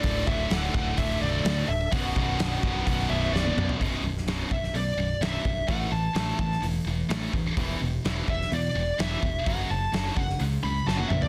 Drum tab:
HH |o---o---o---o---|o---o---o-------|o---o---o---o---|o---o---o---o---|
SD |----o-------o---|----o-------o---|---oo--o----o---|----o--o----o---|
T1 |----------------|-------------o--|----------------|----------------|
T2 |----------------|--------------o-|----------------|----------------|
FT |----------------|---------------o|----------------|----------------|
BD |o-o---o-o-------|o-o---o-o-------|o-----o-------o-|o-----o-------o-|

HH |o---o---o---o---|o---o---o-------|
SD |----o--o----o---|----o--o----o---|
T1 |----------------|-------------o--|
T2 |----------------|--------------o-|
FT |----------------|---------------o|
BD |o-----o-------o-|o-----o---------|